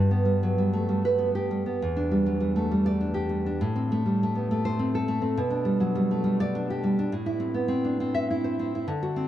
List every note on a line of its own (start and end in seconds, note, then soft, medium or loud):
0.00 1.75 G2 medium
0.11 1.03 B3 medium
0.25 0.57 G3 medium
0.43 1.34 F#3 medium
0.58 0.88 G3 medium
0.73 1.65 A3 medium
0.89 1.50 G3 medium
1.05 1.29 B4 medium
1.18 1.65 B3 medium
1.35 1.80 G4 medium
1.51 1.81 G3 medium
1.66 1.81 B3 medium
1.82 3.59 E2 medium
1.97 2.87 D4 medium
2.11 2.39 G3 medium
2.26 3.17 F#3 medium
2.40 2.70 G3 medium
2.56 3.47 A3 medium
2.71 3.28 G3 medium
2.86 3.10 D5 medium
3.01 3.45 D4 medium
3.14 3.60 G4 medium
3.29 3.60 G3 medium
3.46 3.61 D4 medium
3.61 5.35 A2 medium
3.76 4.05 C4 medium
3.92 4.22 A3 medium
4.06 4.79 G3 medium
4.23 4.50 A3 medium
4.35 5.24 B3 medium
4.51 5.07 A3 medium
4.65 4.89 C5 medium
4.79 5.20 C4 medium
4.95 5.39 A4 medium
5.08 5.38 A3 medium
5.22 5.38 C4 medium
5.37 7.09 B2 medium
5.50 6.39 D4 medium
5.65 5.94 G3 medium
5.80 6.69 F#3 medium
5.95 6.23 G3 medium
6.11 6.99 A3 medium
6.24 6.82 G3 medium
6.40 6.64 D5 medium
6.55 6.98 D4 medium
6.70 7.14 G4 medium
6.84 7.13 G3 medium
6.99 7.14 D4 medium
7.12 8.83 A2 medium
7.26 8.14 E4 medium
7.40 7.67 C4 medium
7.54 8.44 B3 medium
7.68 7.99 C4 medium
7.85 8.73 D4 soft
8.00 8.58 C4 medium
8.15 8.30 E5 medium
8.31 8.74 E4 medium
8.44 8.88 C5 medium
8.59 8.88 C4 medium
8.75 8.89 E4 medium
8.88 9.28 D3 medium
9.03 9.28 F#4 medium
9.16 9.28 C4 medium